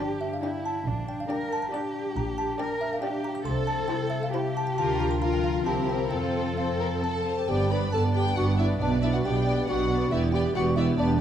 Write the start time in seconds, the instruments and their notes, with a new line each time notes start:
Already playing: harp G2 D3 G3, cello section G4
0.00 viola section D4, harp G4, violin section G4 D5, music box G5
0.10 harp D4
0.20 harp D5, music box E5
0.31 music box F5, harp G5
0.42 viola section D4, cello section E4, violin section G4 D5, harp D5, music box G5
0.64 harp D4, music box A5
0.75 harp G3
0.85 double bass section A#1, harp A#2, cello section D4
0.96 harp A#3
1.07 harp G3, music box G5
1.18 harp D4, music box F5
1.29 viola section D4, harp G4, violin section G4 D5, cello section A#4, music box G5
1.40 harp D4
1.51 harp D5, music box A5
1.62 harp G5, music box A#5
1.72 viola section D4, cello section G4, violin section G4 D5, harp D5, music box D6
1.84 harp G4
1.94 harp D4
2.05 harp G3
2.16 double bass section A#1, harp A#2, music box A#5
2.27 harp A#3
2.38 harp G3, music box A5
2.49 harp D4
2.59 viola section D4, harp G4, violin section G4 D5, cello section A#4, music box G5
2.71 harp D4
2.81 harp D5, music box E5
2.92 music box F5, harp G5
3.02 viola section D4, cello section G4, violin section G4 D5, harp D5, music box G5
3.14 harp G4
3.24 harp D4, music box A#5
3.35 harp G3, music box D6
3.45 double bass section C2, harp C3, cello section A4, music box C6
3.57 harp C4
3.67 music box A5
3.80 harp E4
3.88 viola section E4, violin section G4 C5, harp G4, music box G5
4.02 harp E4
4.10 music box E5, harp E5
4.23 music box F5, harp G5
4.33 viola section E4, cello section G4, violin section G4 C5, harp E5, music box G5
4.45 harp G4
4.56 harp E4, music box A5
4.67 harp G3, music box G5
4.77 double bass section D2, harp D3, viola section F4, violin section F4 A#4, music box A5
4.89 harp D4
5.00 harp F3, music box A#5
5.10 harp F4, music box C6
5.21 cello section F4, viola section F4, violin section F4 A#4, harp A#4, music box A#5
5.33 harp F4, music box G5
5.44 harp F5, music box F5
5.65 double bass section C2, harp C3, viola section C4, violin section E4 A#4, cello section G4, music box A5
5.77 harp G3
5.89 harp C4, music box G5
6.00 harp E4
6.11 double bass section F2, harp F3, viola section C4, violin section F4 A4, cello section A4, music box G5
6.23 harp C4
6.35 harp F4
6.57 viola section C4, violin section A4 C5, harp C5, music box F5
6.70 harp F5
6.80 violin section A#4
6.92 harp C6
7.02 clarinet A4, violin section A4 A5, music box A5
7.15 harp F5
7.25 violin section F4, harp C5
7.38 harp F4, violin section G4
7.48 double bass section G1, cello section G2, harp G2, viola section B3 D4, clarinet G4, violin section D5 G5, music box G5
7.70 viola section B3 D4, harp B3, clarinet B4, violin section D5 B5, music box B5
7.92 double bass section G1, cello section G2, viola section B3 D4, harp D4, clarinet A4, violin section D5 A5, music box A5
8.14 viola section B3 D4, clarinet G4, harp B4, violin section D5 G5, music box G5
8.35 double bass section G1, cello section G2, viola section B3 D4, harp D4, clarinet F#4, violin section D5 F#5, music box F#5
8.57 viola section B3 D4, clarinet E4, harp B4, violin section D5 E5, music box E5
8.79 double bass section B1, cello section B2, harp B2, viola section B3 D4, clarinet D4, violin section D5, music box D5
9.02 viola section B3 D4, harp B3, clarinet E4, violin section D5 E5, music box E5
9.13 clarinet F#4, violin section F#5, music box F#5
9.24 double bass section B1, cello section B2, viola section B3 D4, clarinet G4, violin section D5 G5, music box G5
9.45 viola section B3 D4, harp B4, violin section D5
9.67 double bass section B1, cello section B2, viola section B3 D4, clarinet F#4, violin section D5 F#5, music box F#5
9.90 viola section B3 D4, harp B4, violin section D5
10.11 double bass section E1, harp E2, cello section E2, viola section B3 G4, clarinet E4, violin section D5 E5, music box E5
10.32 harp G3, viola section B3 G4, clarinet G4, violin section D5 G5, music box G5
10.54 double bass section E1, cello section E2, viola section B3 G4, harp D4, clarinet F#4, violin section D5 F#5, music box F#5
10.75 viola section B3 G4, clarinet E4, harp B4, violin section D5 E5, music box E5
10.97 double bass section E1, cello section E2, viola section B3 G4, clarinet D4, violin section D5, music box D5